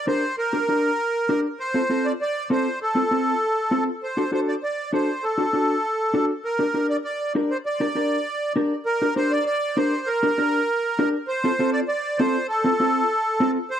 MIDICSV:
0, 0, Header, 1, 3, 480
1, 0, Start_track
1, 0, Key_signature, -2, "minor"
1, 0, Tempo, 302877
1, 601, Time_signature, 4, 2, 24, 8
1, 21866, End_track
2, 0, Start_track
2, 0, Title_t, "Accordion"
2, 0, Program_c, 0, 21
2, 123, Note_on_c, 0, 72, 95
2, 569, Note_off_c, 0, 72, 0
2, 608, Note_on_c, 0, 70, 91
2, 2225, Note_off_c, 0, 70, 0
2, 2536, Note_on_c, 0, 72, 93
2, 3256, Note_on_c, 0, 74, 91
2, 3274, Note_off_c, 0, 72, 0
2, 3362, Note_off_c, 0, 74, 0
2, 3508, Note_on_c, 0, 74, 97
2, 3946, Note_off_c, 0, 74, 0
2, 3988, Note_on_c, 0, 72, 85
2, 4426, Note_off_c, 0, 72, 0
2, 4480, Note_on_c, 0, 69, 87
2, 6083, Note_off_c, 0, 69, 0
2, 6391, Note_on_c, 0, 72, 75
2, 6829, Note_off_c, 0, 72, 0
2, 6874, Note_on_c, 0, 72, 87
2, 6977, Note_off_c, 0, 72, 0
2, 7103, Note_on_c, 0, 74, 81
2, 7209, Note_off_c, 0, 74, 0
2, 7345, Note_on_c, 0, 74, 87
2, 7786, Note_off_c, 0, 74, 0
2, 7827, Note_on_c, 0, 72, 73
2, 8298, Note_on_c, 0, 69, 82
2, 8314, Note_off_c, 0, 72, 0
2, 9913, Note_off_c, 0, 69, 0
2, 10217, Note_on_c, 0, 70, 81
2, 10885, Note_off_c, 0, 70, 0
2, 10931, Note_on_c, 0, 74, 91
2, 11040, Note_off_c, 0, 74, 0
2, 11164, Note_on_c, 0, 74, 81
2, 11615, Note_off_c, 0, 74, 0
2, 11897, Note_on_c, 0, 72, 84
2, 12004, Note_off_c, 0, 72, 0
2, 12139, Note_on_c, 0, 74, 87
2, 13513, Note_off_c, 0, 74, 0
2, 14038, Note_on_c, 0, 70, 91
2, 14491, Note_off_c, 0, 70, 0
2, 14522, Note_on_c, 0, 72, 92
2, 14763, Note_on_c, 0, 74, 97
2, 14775, Note_off_c, 0, 72, 0
2, 14967, Note_off_c, 0, 74, 0
2, 14991, Note_on_c, 0, 74, 104
2, 15485, Note_on_c, 0, 72, 85
2, 15496, Note_off_c, 0, 74, 0
2, 15952, Note_on_c, 0, 70, 94
2, 15982, Note_off_c, 0, 72, 0
2, 17576, Note_off_c, 0, 70, 0
2, 17873, Note_on_c, 0, 72, 94
2, 18549, Note_off_c, 0, 72, 0
2, 18589, Note_on_c, 0, 74, 103
2, 18701, Note_off_c, 0, 74, 0
2, 18832, Note_on_c, 0, 74, 95
2, 19306, Note_on_c, 0, 72, 92
2, 19333, Note_off_c, 0, 74, 0
2, 19761, Note_off_c, 0, 72, 0
2, 19790, Note_on_c, 0, 69, 90
2, 21412, Note_off_c, 0, 69, 0
2, 21722, Note_on_c, 0, 72, 97
2, 21866, Note_off_c, 0, 72, 0
2, 21866, End_track
3, 0, Start_track
3, 0, Title_t, "Clean electric guitar"
3, 0, Program_c, 1, 27
3, 113, Note_on_c, 1, 62, 65
3, 121, Note_on_c, 1, 67, 63
3, 124, Note_on_c, 1, 70, 80
3, 370, Note_off_c, 1, 62, 0
3, 371, Note_off_c, 1, 67, 0
3, 374, Note_off_c, 1, 70, 0
3, 838, Note_on_c, 1, 62, 61
3, 843, Note_on_c, 1, 67, 59
3, 852, Note_on_c, 1, 70, 68
3, 924, Note_off_c, 1, 62, 0
3, 927, Note_off_c, 1, 67, 0
3, 930, Note_off_c, 1, 70, 0
3, 1086, Note_on_c, 1, 62, 66
3, 1094, Note_on_c, 1, 67, 62
3, 1103, Note_on_c, 1, 70, 64
3, 1421, Note_off_c, 1, 62, 0
3, 1425, Note_off_c, 1, 67, 0
3, 1429, Note_off_c, 1, 70, 0
3, 2045, Note_on_c, 1, 62, 85
3, 2055, Note_on_c, 1, 67, 75
3, 2059, Note_on_c, 1, 70, 88
3, 2297, Note_off_c, 1, 62, 0
3, 2303, Note_off_c, 1, 67, 0
3, 2303, Note_off_c, 1, 70, 0
3, 2762, Note_on_c, 1, 60, 63
3, 2766, Note_on_c, 1, 65, 54
3, 2778, Note_on_c, 1, 69, 67
3, 2848, Note_off_c, 1, 60, 0
3, 2851, Note_off_c, 1, 65, 0
3, 2854, Note_off_c, 1, 69, 0
3, 3003, Note_on_c, 1, 60, 64
3, 3010, Note_on_c, 1, 65, 56
3, 3018, Note_on_c, 1, 69, 68
3, 3342, Note_off_c, 1, 60, 0
3, 3345, Note_off_c, 1, 65, 0
3, 3349, Note_off_c, 1, 69, 0
3, 3963, Note_on_c, 1, 60, 73
3, 3972, Note_on_c, 1, 65, 58
3, 3976, Note_on_c, 1, 69, 72
3, 4219, Note_off_c, 1, 60, 0
3, 4222, Note_off_c, 1, 65, 0
3, 4225, Note_off_c, 1, 69, 0
3, 4681, Note_on_c, 1, 60, 63
3, 4688, Note_on_c, 1, 65, 59
3, 4697, Note_on_c, 1, 69, 65
3, 4769, Note_off_c, 1, 60, 0
3, 4773, Note_off_c, 1, 65, 0
3, 4777, Note_off_c, 1, 69, 0
3, 4930, Note_on_c, 1, 60, 61
3, 4936, Note_on_c, 1, 65, 57
3, 4943, Note_on_c, 1, 69, 71
3, 5266, Note_off_c, 1, 60, 0
3, 5270, Note_off_c, 1, 65, 0
3, 5272, Note_off_c, 1, 69, 0
3, 5883, Note_on_c, 1, 60, 78
3, 5890, Note_on_c, 1, 65, 70
3, 5899, Note_on_c, 1, 69, 87
3, 6139, Note_off_c, 1, 60, 0
3, 6144, Note_off_c, 1, 65, 0
3, 6145, Note_off_c, 1, 69, 0
3, 6609, Note_on_c, 1, 62, 60
3, 6614, Note_on_c, 1, 66, 57
3, 6623, Note_on_c, 1, 69, 68
3, 6695, Note_off_c, 1, 62, 0
3, 6696, Note_off_c, 1, 66, 0
3, 6702, Note_off_c, 1, 69, 0
3, 6841, Note_on_c, 1, 62, 58
3, 6847, Note_on_c, 1, 66, 62
3, 6857, Note_on_c, 1, 69, 73
3, 7183, Note_off_c, 1, 62, 0
3, 7186, Note_off_c, 1, 66, 0
3, 7188, Note_off_c, 1, 69, 0
3, 7808, Note_on_c, 1, 62, 72
3, 7817, Note_on_c, 1, 66, 60
3, 7825, Note_on_c, 1, 69, 82
3, 8063, Note_off_c, 1, 62, 0
3, 8065, Note_off_c, 1, 66, 0
3, 8071, Note_off_c, 1, 69, 0
3, 8521, Note_on_c, 1, 62, 60
3, 8531, Note_on_c, 1, 66, 57
3, 8537, Note_on_c, 1, 69, 66
3, 8611, Note_off_c, 1, 62, 0
3, 8617, Note_off_c, 1, 66, 0
3, 8618, Note_off_c, 1, 69, 0
3, 8766, Note_on_c, 1, 62, 65
3, 8779, Note_on_c, 1, 66, 60
3, 8782, Note_on_c, 1, 69, 70
3, 9106, Note_off_c, 1, 62, 0
3, 9113, Note_off_c, 1, 66, 0
3, 9113, Note_off_c, 1, 69, 0
3, 9724, Note_on_c, 1, 62, 78
3, 9736, Note_on_c, 1, 66, 76
3, 9740, Note_on_c, 1, 69, 89
3, 9981, Note_off_c, 1, 62, 0
3, 9987, Note_off_c, 1, 66, 0
3, 9988, Note_off_c, 1, 69, 0
3, 10443, Note_on_c, 1, 62, 65
3, 10452, Note_on_c, 1, 67, 62
3, 10457, Note_on_c, 1, 70, 67
3, 10533, Note_off_c, 1, 62, 0
3, 10536, Note_off_c, 1, 67, 0
3, 10539, Note_off_c, 1, 70, 0
3, 10684, Note_on_c, 1, 62, 65
3, 10691, Note_on_c, 1, 67, 59
3, 10696, Note_on_c, 1, 70, 70
3, 11025, Note_off_c, 1, 62, 0
3, 11028, Note_off_c, 1, 67, 0
3, 11031, Note_off_c, 1, 70, 0
3, 11649, Note_on_c, 1, 62, 75
3, 11656, Note_on_c, 1, 67, 65
3, 11665, Note_on_c, 1, 70, 80
3, 11903, Note_off_c, 1, 62, 0
3, 11908, Note_off_c, 1, 67, 0
3, 11910, Note_off_c, 1, 70, 0
3, 12364, Note_on_c, 1, 62, 59
3, 12372, Note_on_c, 1, 67, 59
3, 12375, Note_on_c, 1, 70, 67
3, 12454, Note_off_c, 1, 62, 0
3, 12455, Note_off_c, 1, 67, 0
3, 12459, Note_off_c, 1, 70, 0
3, 12603, Note_on_c, 1, 62, 63
3, 12609, Note_on_c, 1, 67, 59
3, 12621, Note_on_c, 1, 70, 73
3, 12945, Note_off_c, 1, 62, 0
3, 12949, Note_off_c, 1, 67, 0
3, 12951, Note_off_c, 1, 70, 0
3, 13561, Note_on_c, 1, 62, 88
3, 13575, Note_on_c, 1, 67, 72
3, 13575, Note_on_c, 1, 70, 87
3, 13820, Note_off_c, 1, 62, 0
3, 13823, Note_off_c, 1, 67, 0
3, 13826, Note_off_c, 1, 70, 0
3, 14288, Note_on_c, 1, 62, 66
3, 14292, Note_on_c, 1, 67, 54
3, 14305, Note_on_c, 1, 70, 73
3, 14375, Note_off_c, 1, 62, 0
3, 14378, Note_off_c, 1, 67, 0
3, 14380, Note_off_c, 1, 70, 0
3, 14518, Note_on_c, 1, 62, 72
3, 14525, Note_on_c, 1, 67, 65
3, 14532, Note_on_c, 1, 70, 73
3, 14862, Note_off_c, 1, 62, 0
3, 14864, Note_off_c, 1, 67, 0
3, 14868, Note_off_c, 1, 70, 0
3, 15480, Note_on_c, 1, 62, 76
3, 15487, Note_on_c, 1, 67, 64
3, 15494, Note_on_c, 1, 70, 77
3, 15738, Note_off_c, 1, 62, 0
3, 15741, Note_off_c, 1, 67, 0
3, 15745, Note_off_c, 1, 70, 0
3, 16209, Note_on_c, 1, 62, 69
3, 16217, Note_on_c, 1, 67, 61
3, 16222, Note_on_c, 1, 70, 67
3, 16294, Note_off_c, 1, 62, 0
3, 16298, Note_off_c, 1, 67, 0
3, 16300, Note_off_c, 1, 70, 0
3, 16450, Note_on_c, 1, 62, 70
3, 16455, Note_on_c, 1, 67, 64
3, 16469, Note_on_c, 1, 70, 69
3, 16786, Note_off_c, 1, 62, 0
3, 16790, Note_off_c, 1, 67, 0
3, 16793, Note_off_c, 1, 70, 0
3, 17413, Note_on_c, 1, 62, 88
3, 17420, Note_on_c, 1, 67, 80
3, 17425, Note_on_c, 1, 70, 98
3, 17663, Note_off_c, 1, 62, 0
3, 17665, Note_off_c, 1, 67, 0
3, 17669, Note_off_c, 1, 70, 0
3, 18128, Note_on_c, 1, 60, 62
3, 18139, Note_on_c, 1, 65, 61
3, 18146, Note_on_c, 1, 69, 80
3, 18212, Note_off_c, 1, 60, 0
3, 18218, Note_off_c, 1, 65, 0
3, 18220, Note_off_c, 1, 69, 0
3, 18370, Note_on_c, 1, 60, 72
3, 18380, Note_on_c, 1, 65, 67
3, 18383, Note_on_c, 1, 69, 75
3, 18705, Note_off_c, 1, 60, 0
3, 18708, Note_off_c, 1, 65, 0
3, 18711, Note_off_c, 1, 69, 0
3, 19327, Note_on_c, 1, 60, 77
3, 19333, Note_on_c, 1, 65, 67
3, 19340, Note_on_c, 1, 69, 86
3, 19578, Note_off_c, 1, 60, 0
3, 19582, Note_off_c, 1, 65, 0
3, 19583, Note_off_c, 1, 69, 0
3, 20036, Note_on_c, 1, 60, 64
3, 20047, Note_on_c, 1, 65, 54
3, 20055, Note_on_c, 1, 69, 72
3, 20125, Note_off_c, 1, 60, 0
3, 20130, Note_off_c, 1, 65, 0
3, 20134, Note_off_c, 1, 69, 0
3, 20282, Note_on_c, 1, 60, 67
3, 20291, Note_on_c, 1, 65, 68
3, 20297, Note_on_c, 1, 69, 76
3, 20619, Note_off_c, 1, 60, 0
3, 20623, Note_off_c, 1, 65, 0
3, 20625, Note_off_c, 1, 69, 0
3, 21239, Note_on_c, 1, 60, 85
3, 21253, Note_on_c, 1, 65, 75
3, 21256, Note_on_c, 1, 69, 90
3, 21494, Note_off_c, 1, 60, 0
3, 21497, Note_off_c, 1, 65, 0
3, 21501, Note_off_c, 1, 69, 0
3, 21866, End_track
0, 0, End_of_file